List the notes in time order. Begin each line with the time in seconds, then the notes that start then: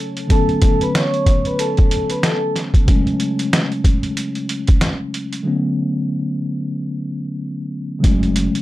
Already playing: C#3 F#3 A3 C#4
0.17 closed hi-hat
0.27 D3 F#3 A3 B3 A4 A5, kick, closed hi-hat
0.31 C#4
0.49 closed hi-hat
0.62 kick, closed hi-hat
0.81 B4 B5, closed hi-hat
0.95 C#5 C#6, snare, closed hi-hat
1.14 closed hi-hat
1.26 kick, closed hi-hat
1.45 B4 B5, closed hi-hat
1.59 A4 A5, closed hi-hat
1.77 kick, closed hi-hat
1.91 closed hi-hat
2.10 B4 B5, closed hi-hat
2.23 A4 A5, snare, closed hi-hat
2.56 snare, closed hi-hat
2.74 kick, closed hi-hat
2.85 C#3 F#3 G#3 A3, kick, closed hi-hat
2.90 C#4
3.07 closed hi-hat
3.20 closed hi-hat
3.39 closed hi-hat
3.53 snare, closed hi-hat
3.72 closed hi-hat
3.84 kick, closed hi-hat
4.03 closed hi-hat
4.17 closed hi-hat
4.35 closed hi-hat
4.49 closed hi-hat
4.67 kick, closed hi-hat
4.81 snare, closed hi-hat
5.14 closed hi-hat
5.33 closed hi-hat
5.43 D3 F#3 A3 B3
5.48 C#4
7.99 C#3 F#3 G#3 A3
8.04 F#1 C#4, kick, closed hi-hat
8.23 closed hi-hat
8.36 closed hi-hat
8.55 closed hi-hat